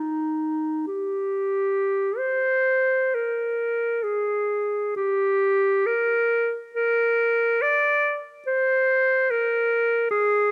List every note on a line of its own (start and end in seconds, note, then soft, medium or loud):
0.00 0.86 D#4 soft
0.87 2.19 G4 soft
2.17 3.16 C5 medium
3.15 4.05 A#4 soft
4.03 4.96 G#4 soft
4.96 5.88 G4 medium
5.86 6.58 A#4 medium
6.75 7.64 A#4 medium
7.62 8.21 D5 medium
8.47 9.32 C5 medium
9.30 10.10 A#4 medium
10.11 10.52 G#4 medium